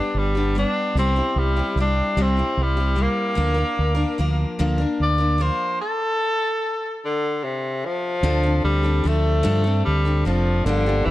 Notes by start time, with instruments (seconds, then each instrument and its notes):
Already playing: steel-string acoustic guitar G3 B3 D4 G4, tenor saxophone D4
0.14 fingered electric bass G1, tenor saxophone G3
0.35 steel-string acoustic guitar G3 B3 D4 G4
0.55 steel-string acoustic guitar G3 B3 D4 G4, tenor saxophone D4
0.95 fingered electric bass C2, steel-string acoustic guitar C3 G3 C4, tenor saxophone C4
0.99 steel-string acoustic guitar E4 G4
1.16 steel-string acoustic guitar C4 E4 G4
1.36 fingered electric bass C2, tenor saxophone G3
1.56 steel-string acoustic guitar C4 E4 G4
1.76 fingered electric bass C2, steel-string acoustic guitar G3 C4 E4
1.80 tenor saxophone D4, steel-string acoustic guitar G4
2.17 fingered electric bass C2, steel-string acoustic guitar C3 G3 C4 E4 G4
2.22 tenor saxophone C4
2.37 steel-string acoustic guitar C4 E4 G4
2.57 fingered electric bass C2
2.63 tenor saxophone G3
2.77 steel-string acoustic guitar C4 E4 G4
2.95 steel-string acoustic guitar G3 C4 E4 G4
3.02 tenor saxophone A#3
3.35 fingered electric bass D2, steel-string acoustic guitar D3 F3 A#3 D4 A#4
3.54 steel-string acoustic guitar A#3 D4 A#4
3.79 fingered electric bass D2
3.95 steel-string acoustic guitar A#3 D4 A#4
4.18 fingered electric bass D2, steel-string acoustic guitar F3 A#3 D4 A#4
4.59 fingered electric bass D2, steel-string acoustic guitar D3 F3 A#3 D4 A#4
4.78 steel-string acoustic guitar A#3 D4 A#4
5.00 fingered electric bass D2, tenor saxophone D5
5.18 steel-string acoustic guitar A#3 D4 A#4
5.38 steel-string acoustic guitar F3 A#3 D4 A#4, tenor saxophone C5
5.81 tenor saxophone A4
7.05 tenor saxophone D3
7.44 tenor saxophone C3
7.85 tenor saxophone F3
8.23 fingered electric bass D2, steel-string acoustic guitar D3 F3 C4 D4 A4
8.43 steel-string acoustic guitar C4 D4 A4
8.64 fingered electric bass D2, tenor saxophone G3
8.83 steel-string acoustic guitar C4 D4 A4
9.04 fingered electric bass D2, steel-string acoustic guitar F3 C4 D4 A4
9.08 tenor saxophone A3
9.43 fingered electric bass G2, steel-string acoustic guitar D3 F3 C4 D4 A4
9.64 steel-string acoustic guitar C4 D4 A4
9.84 fingered electric bass D2, tenor saxophone G3
10.05 steel-string acoustic guitar C4 D4 A4
10.25 fingered electric bass F1, steel-string acoustic guitar F3 C4 D4 A4, tenor saxophone F3
10.65 fingered electric bass G1, steel-string acoustic guitar G2 D3 F3 A#3 D4 G4, tenor saxophone D3
10.86 steel-string acoustic guitar F3 A#3 D4 G4
11.05 fingered electric bass G1, tenor saxophone E3